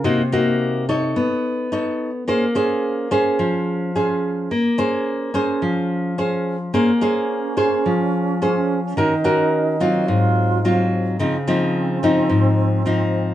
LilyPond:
<<
  \new Staff \with { instrumentName = "Nylon-string guitar" } { \time 4/4 \key bes \minor \tempo 4 = 108 << { <bes ees' ges'>8 <bes ees' ges'>4 <ees' a' des''>4. <dis' a' cis''>8 r8 | <des' aes' c''>8 <des' aes' c''>4 <des' aes' c''>4. <des' aes' c''>4 | r8 <des' aes' c''>4 <des' aes' c''>4. <des' aes' c''>8 r8 | <des' aes' c''>8 <des' aes' c''>4 <des' aes' c''>4. <des' aes' c''>8 r8 |
<des' ges' bes'>8 <des' ges' bes'>4 <ges c' f'>4. <ges c' f'>4 | <f c' ees'>8 <f c' ees'>4 <f c' ees'>4. <f c' ees'>4 | } \\ { c2 b2 | bes2 f2 | bes2 f2 | bes2 f2 |
ees2 aes,2 | des2 aes,2 | } >> }
  \new Staff \with { instrumentName = "Alto flute" } { \time 4/4 \key bes \minor r1 | r1 | r1 | des'1 |
ees'2 f'4. r8 | c'1 | }
>>